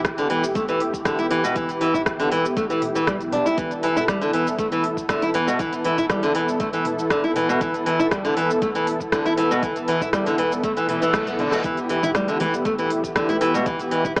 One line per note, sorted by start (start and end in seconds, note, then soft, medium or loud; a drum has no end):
0.00 14.20 E3 medium
0.00 14.20 B3 medium
0.00 14.20 E4 medium
0.00 3.56 G4 medium
0.05 kick loud
0.05 cross-stick loud
0.05 closed hi-hat medium
0.05 shaker medium
0.18 0.29 D3 loud
0.18 closed hi-hat soft
0.18 shaker soft
0.30 0.62 E1 loud
0.30 0.43 E3 loud
0.30 open hi-hat medium
0.44 shaker medium
0.55 0.62 A3 loud
0.55 kick loud
0.55 closed hi-hat medium
0.55 shaker medium
0.68 1.00 E1 loud
0.68 0.79 E3 loud
0.68 closed hi-hat soft
0.68 shaker soft
0.80 open hi-hat medium
0.94 kick medium
0.94 shaker medium
1.05 1.38 E1 medium
1.05 1.18 D3 loud
1.05 kick loud
1.05 cross-stick loud
1.05 closed hi-hat medium
1.05 shaker medium
1.19 1.25 E4 loud
1.19 closed hi-hat soft
1.19 shaker soft
1.31 1.43 E3 loud
1.31 open hi-hat medium
1.44 1.55 B2 loud
1.44 shaker medium
1.56 1.89 E1 loud
1.56 1.69 E3 medium
1.56 kick loud
1.56 closed hi-hat medium
1.56 shaker medium
1.69 closed hi-hat soft
1.69 shaker soft
1.81 1.94 E3 loud
1.81 open hi-hat medium
1.94 2.03 E1 loud
1.94 2.01 E4 loud
1.94 kick medium
1.94 mid tom medium
1.94 shaker medium
2.06 kick loud
2.06 cross-stick loud
2.06 closed hi-hat medium
2.06 shaker medium
2.20 2.30 D3 loud
2.20 open hi-hat soft
2.20 shaker soft
2.31 2.64 E1 loud
2.31 2.44 E3 loud
2.31 open hi-hat medium
2.45 shaker medium
2.57 2.64 A3 loud
2.57 kick loud
2.57 closed hi-hat medium
2.57 shaker medium
2.70 3.02 E1 loud
2.70 2.81 E3 loud
2.70 closed hi-hat soft
2.70 shaker soft
2.82 mid tom loud
2.82 open hi-hat medium
2.95 3.07 E3 medium
2.95 closed hi-hat soft
2.95 shaker medium
3.07 3.40 B1 medium
3.07 3.14 G3 medium
3.07 kick loud
3.07 cross-stick loud
3.07 closed hi-hat medium
3.07 shaker medium
3.20 closed hi-hat soft
3.20 shaker soft
3.32 3.44 D4 loud
3.32 mid tom medium
3.32 open hi-hat medium
3.46 3.57 E4 medium
3.46 shaker medium
3.58 3.90 E1 loud
3.58 3.70 E3 medium
3.58 11.63 A4 medium
3.58 kick loud
3.58 closed hi-hat medium
3.58 shaker medium
3.71 closed hi-hat soft
3.71 shaker soft
3.83 3.96 E3 loud
3.83 open hi-hat medium
3.96 4.05 E1 loud
3.96 4.03 E4 loud
3.96 mid tom medium
3.96 shaker medium
4.08 4.20 G3 loud
4.08 kick loud
4.08 cross-stick loud
4.08 closed hi-hat medium
4.08 shaker medium
4.21 4.32 D3 loud
4.21 closed hi-hat soft
4.21 shaker soft
4.33 4.66 E1 loud
4.33 4.46 E3 loud
4.33 open hi-hat medium
4.47 shaker medium
4.59 4.66 A3 loud
4.59 kick loud
4.59 closed hi-hat medium
4.59 shaker medium
4.72 5.04 E1 loud
4.72 4.83 E3 loud
4.72 closed hi-hat soft
4.72 shaker soft
4.84 open hi-hat medium
4.97 kick medium
4.97 shaker medium
5.09 5.42 E1 medium
5.09 5.21 D3 medium
5.09 kick loud
5.09 cross-stick loud
5.09 closed hi-hat medium
5.09 shaker medium
5.22 5.29 E4 loud
5.22 closed hi-hat soft
5.22 shaker soft
5.34 5.47 E3 loud
5.34 open hi-hat medium
5.48 5.58 B2 loud
5.48 shaker medium
5.59 5.92 E1 loud
5.59 5.72 E3 medium
5.59 kick loud
5.59 closed hi-hat medium
5.59 shaker medium
5.73 closed hi-hat soft
5.73 shaker soft
5.84 5.97 E3 loud
5.84 open hi-hat medium
5.98 6.06 E1 loud
5.98 6.04 E4 loud
5.98 kick medium
5.98 mid tom medium
5.98 shaker medium
6.10 6.22 G3 loud
6.10 kick loud
6.10 cross-stick loud
6.10 closed hi-hat medium
6.10 shaker medium
6.23 6.34 D3 loud
6.23 open hi-hat medium
6.23 shaker soft
6.35 6.68 E1 loud
6.35 6.48 E3 loud
6.35 open hi-hat medium
6.49 shaker medium
6.60 6.67 A3 loud
6.60 kick loud
6.60 closed hi-hat medium
6.60 shaker medium
6.73 7.05 E1 loud
6.73 6.84 E3 loud
6.73 closed hi-hat soft
6.73 shaker soft
6.85 mid tom medium
6.85 open hi-hat medium
6.99 shaker medium
7.10 7.43 E1 loud
7.10 7.23 D3 loud
7.10 kick loud
7.10 cross-stick loud
7.10 closed hi-hat medium
7.10 shaker medium
7.24 7.30 E4 loud
7.24 closed hi-hat soft
7.24 shaker soft
7.36 7.48 E3 loud
7.36 mid tom loud
7.36 open hi-hat medium
7.49 7.60 B2 loud
7.49 shaker medium
7.61 7.94 E1 loud
7.61 7.74 E3 medium
7.61 kick loud
7.61 closed hi-hat medium
7.61 shaker medium
7.74 closed hi-hat soft
7.74 shaker soft
7.86 7.99 E3 loud
7.86 open hi-hat medium
7.99 8.08 E1 loud
7.99 8.06 E4 loud
7.99 mid tom medium
7.99 shaker medium
8.11 8.23 G3 loud
8.11 kick loud
8.11 cross-stick loud
8.11 closed hi-hat medium
8.11 shaker medium
8.25 8.35 D3 loud
8.25 closed hi-hat soft
8.25 shaker soft
8.37 8.69 E1 loud
8.37 8.49 E3 loud
8.37 open hi-hat medium
8.51 shaker medium
8.62 8.69 A3 loud
8.62 kick loud
8.62 closed hi-hat medium
8.62 shaker medium
8.75 9.07 E1 loud
8.75 8.86 E3 loud
8.75 closed hi-hat soft
8.75 shaker soft
8.87 open hi-hat medium
9.00 kick medium
9.00 shaker medium
9.12 9.45 E1 loud
9.12 9.24 D3 medium
9.12 kick loud
9.12 cross-stick loud
9.12 closed hi-hat medium
9.12 shaker medium
9.26 9.32 E4 loud
9.26 closed hi-hat soft
9.26 shaker soft
9.37 9.50 E3 loud
9.37 open hi-hat medium
9.51 9.62 B2 loud
9.51 shaker medium
9.63 9.95 E1 loud
9.63 9.75 E3 medium
9.63 kick loud
9.63 closed hi-hat medium
9.63 shaker medium
9.76 closed hi-hat soft
9.76 shaker soft
9.88 10.01 E3 loud
9.88 open hi-hat medium
10.01 10.10 E1 loud
10.01 10.08 E4 loud
10.01 kick medium
10.01 mid tom medium
10.01 shaker medium
10.13 10.25 G3 loud
10.13 kick loud
10.13 cross-stick loud
10.13 closed hi-hat medium
10.13 shaker medium
10.26 10.37 D3 loud
10.26 open hi-hat medium
10.26 shaker soft
10.38 10.71 E1 loud
10.38 10.51 E3 loud
10.38 open hi-hat loud
10.52 shaker medium
10.63 10.71 A3 loud
10.63 kick loud
10.63 closed hi-hat medium
10.63 reverse cymbal medium
10.63 shaker medium
10.77 11.09 E1 loud
10.77 10.88 E3 loud
10.77 closed hi-hat soft
10.77 shaker soft
10.89 11.01 E3 medium
10.89 mid tom medium
10.89 open hi-hat medium
11.02 11.13 E3 loud
11.02 closed hi-hat soft
11.02 shaker medium
11.14 11.47 B1 medium
11.14 11.26 A3 loud
11.14 kick loud
11.14 cross-stick loud
11.14 closed hi-hat medium
11.14 shaker medium
11.27 11.38 B3 medium
11.27 closed hi-hat soft
11.27 shaker soft
11.39 11.52 D3 loud
11.39 mid tom medium
11.39 open hi-hat medium
11.52 11.59 B2 medium
11.52 cross-stick medium
11.52 closed hi-hat soft
11.52 shaker medium
11.64 11.97 E1 loud
11.64 11.77 E3 medium
11.64 14.20 G4 medium
11.64 kick loud
11.64 closed hi-hat medium
11.64 shaker medium
11.77 closed hi-hat soft
11.77 shaker soft
11.89 12.02 E3 loud
11.89 open hi-hat medium
12.03 12.11 E1 loud
12.03 12.10 E4 loud
12.03 mid tom medium
12.03 low conga loud
12.03 shaker medium
12.15 12.27 G3 loud
12.15 kick loud
12.15 cross-stick loud
12.15 closed hi-hat medium
12.15 high conga loud
12.15 shaker medium
12.28 12.39 D3 loud
12.28 closed hi-hat soft
12.28 shaker soft
12.40 12.73 E1 loud
12.40 12.53 E3 loud
12.40 open hi-hat loud
12.40 high conga medium
12.40 low conga loud
12.54 shaker medium
12.65 12.73 A3 loud
12.65 kick loud
12.65 closed hi-hat medium
12.65 shaker medium
12.78 13.10 E1 loud
12.78 12.89 E3 loud
12.78 closed hi-hat soft
12.78 shaker soft
12.90 open hi-hat medium
13.04 kick medium
13.04 shaker medium
13.16 13.48 E1 medium
13.16 13.28 D3 loud
13.16 kick loud
13.16 cross-stick loud
13.16 closed hi-hat medium
13.16 shaker medium
13.29 13.35 E4 loud
13.29 closed hi-hat soft
13.29 high conga medium
13.29 shaker soft
13.41 13.54 E3 loud
13.41 open hi-hat loud
13.54 13.65 B2 loud
13.54 high conga loud
13.54 shaker medium
13.66 13.99 E1 loud
13.66 13.79 E3 medium
13.66 kick loud
13.66 closed hi-hat medium
13.66 shaker medium
13.79 closed hi-hat soft
13.79 shaker soft
13.91 14.04 E3 loud
13.91 open hi-hat medium
14.04 14.13 E1 loud
14.04 14.11 E4 loud
14.04 kick medium
14.04 mid tom medium
14.04 low conga loud
14.04 shaker medium
14.16 14.20 G3 loud
14.16 kick loud
14.16 cross-stick loud
14.16 closed hi-hat medium
14.16 high conga loud